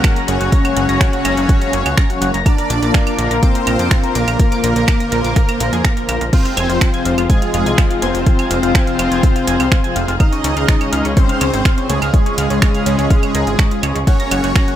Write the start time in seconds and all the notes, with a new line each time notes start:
Already playing: C#3 F#3 G#3 A#3 C#4 F#4 G#4 A#4
0.04 F#4 F#5, finger snap, kick, closed hi-hat, claves
0.16 A#5 A#6, closed hi-hat
0.28 F#1 C#4 F#4 C#5 F#5, closed hi-hat
0.40 F#1 F#4 F#5, closed hi-hat
0.52 F5 A#5 A#6, kick, closed hi-hat
0.65 F#4 F#5, closed hi-hat, claves
0.76 F#1 F#4 F#5, closed hi-hat
0.89 F#1 F#3 C#4 F#4 A#5 A#6, closed hi-hat
1.01 F#4 F#5, finger snap, kick, closed hi-hat
1.13 F#4 F#5, closed hi-hat
1.25 F#1 A#5 A#6, closed hi-hat, claves
1.37 F#1 F#4 F#5, closed hi-hat
1.49 F#4 F#5, kick, closed hi-hat
1.61 A#5 A#6, closed hi-hat
1.73 F#1 F#3 C#4 F#4 F#5, closed hi-hat
1.86 C#2 F#4 F#5, closed hi-hat, claves
1.97 A#5 A#6, finger snap, kick, closed hi-hat
2.10 F#3 C#4 F#4 F#5, closed hi-hat
2.21 F#1 F#4 F#5, closed hi-hat
2.34 F#1 A#5 A#6, closed hi-hat
2.46 D3 F3 D4 F4 A#4 D5 A#5, kick, closed hi-hat, claves
2.58 A#4 A#5, closed hi-hat
2.70 A#1 D6, closed hi-hat
2.82 A#1 A#3 F4 A#4 A#5, closed hi-hat
2.94 A#4 A#5, finger snap, kick, closed hi-hat
3.07 D6, closed hi-hat, claves
3.18 A#1 A#4 A#5, closed hi-hat
3.31 A#1 A#4 A#5, closed hi-hat
3.43 C4 C5 D6, kick, closed hi-hat
3.55 A#4 A#5, closed hi-hat
3.67 A#1 A#3 F4 A#4 A#5, closed hi-hat, claves
3.79 F2 D6, closed hi-hat
3.91 A#4 A#5, finger snap, kick, closed hi-hat
4.04 A#4 A#5, closed hi-hat
4.15 A#1 A#3 A#4 D6, closed hi-hat
4.28 A#1 A#4 A#5, closed hi-hat, claves
4.39 A#4 C5 A#5, kick, closed hi-hat
4.52 D6, closed hi-hat
4.64 A#1 A#4 A#5, closed hi-hat
4.76 A#1 A#4 A#5, closed hi-hat
4.88 D6, finger snap, kick, closed hi-hat, claves
5.00 A#4 A#5, closed hi-hat
5.12 A#1 A#4 A#5, closed hi-hat
5.24 A#1 D6, closed hi-hat
5.36 A#4 A#5, finger snap, kick, closed hi-hat
5.49 A#4 A#5, closed hi-hat, claves
5.60 A#1 A#4 A#5, closed hi-hat
5.73 F2 G#4 G#5, closed hi-hat
5.85 A#5 A#6, finger snap, kick, closed hi-hat
5.97 A#4 A#5, closed hi-hat
6.09 A#1 A#3 F4 A#4 A#5, closed hi-hat, claves
6.21 A#1 A#4 A#5, closed hi-hat
6.33 C3 G#3 C4 D#4 F4 G#4 C5 F5, kick, closed hi-hat, crash
6.45 F4 F5, closed hi-hat
6.57 F1 G#5 G#6, closed hi-hat, claves
6.70 F1 F3 C4 F4 F5, closed hi-hat
6.81 F4 F5, finger snap, kick, closed hi-hat
6.94 G#5 G#6, closed hi-hat
7.05 F1 F4 F5, closed hi-hat
7.18 F1 F4 F5, closed hi-hat, claves
7.30 G#3 G#4 G#5 G#6, kick, closed hi-hat
7.42 F4 F5, closed hi-hat
7.54 F1 F3 C4 F4 F5, closed hi-hat
7.66 C2 G#5 G#6, closed hi-hat
7.78 F4 F5, finger snap, kick, closed hi-hat, claves
7.90 F4 F5, closed hi-hat
8.02 F1 C4 C5 G#5 G#6, closed hi-hat
8.15 F1 F4 F5, closed hi-hat
8.26 F4 F5, kick, closed hi-hat
8.39 G#5 G#6, closed hi-hat, claves
8.51 F1 F4 F5, closed hi-hat
8.63 F1 F3 C4 F4 F5, closed hi-hat
8.75 G#5 G#6, finger snap, kick, closed hi-hat
8.87 F4 F5, closed hi-hat
8.99 F1 F4 F5, closed hi-hat, claves
9.11 F1 G#5 G#6, closed hi-hat
9.23 F4 F5, kick, closed hi-hat
9.36 F4 F5, closed hi-hat
9.47 F1 F3 C4 F4 G#5 G#6, closed hi-hat
9.60 C2 F4 F5, closed hi-hat, claves
9.72 F4 F5, finger snap, kick, closed hi-hat
9.84 F3 C4 F4 G#5 G#6, closed hi-hat
9.96 F1 F4 F5, closed hi-hat
10.08 F1 F4 F5, closed hi-hat
10.20 C#3 F3 G#3 D#4 D#5 F5 F6, kick, closed hi-hat, claves
10.32 C#4 C#5, closed hi-hat
10.44 C#2 C#4 C#5, closed hi-hat
10.57 C#2 C#3 G#3 C#4 F5 F6, closed hi-hat
10.68 C#4 C#5, finger snap, kick, closed hi-hat
10.81 C#4 C#5, closed hi-hat, claves
10.93 C#2 F5 F6, closed hi-hat
11.05 C#2 C#4 C#5, closed hi-hat
11.17 C4 C#4 C5 C#5, kick, closed hi-hat
11.29 F5 F6, closed hi-hat
11.41 C#2 C#4 C#5, closed hi-hat, claves
11.53 G#1 C#4 C#5, closed hi-hat
11.65 F5 F6, finger snap, kick, closed hi-hat
11.78 C#4 C#5, closed hi-hat
11.89 C#2 G#3 C#4 G#4 C#5, closed hi-hat
12.02 C#2 F5 F6, closed hi-hat, claves
12.14 C#4 C#5, kick, closed hi-hat
12.26 C#4 C#5, closed hi-hat
12.38 C#2 F5 F6, closed hi-hat
12.50 C#2 C#3 G#3 C#4 C#5, closed hi-hat
12.62 C#4 C#5, finger snap, kick, closed hi-hat, claves
12.74 F5 F6, closed hi-hat
12.86 C#2 C#4 C#5, closed hi-hat
12.99 C#2 C#4 C#5, closed hi-hat
13.10 F5 F6, kick, closed hi-hat
13.23 C#4 C#5, closed hi-hat, claves
13.35 C#2 C#3 G#3 C#4 A#4 A#5, closed hi-hat
13.47 G#1 F4 F5, closed hi-hat
13.59 C#4 C#5, finger snap, kick, closed hi-hat
13.71 F4 F5, closed hi-hat
13.83 C#2 C#5 C#6, closed hi-hat, claves
13.95 C#2 C#5 C#6, closed hi-hat
14.07 A#3 C#4 F#4 G#4 C#5 F#5, kick, closed hi-hat, ride
14.20 A#5 A#6, closed hi-hat
14.31 F#1 F#4 F#5, closed hi-hat, claves
14.44 F#1 F#3 C#4 F#4 F#5, closed hi-hat
14.56 A#5 A#6, finger snap, kick, closed hi-hat, ride
14.68 F#4 F#5, closed hi-hat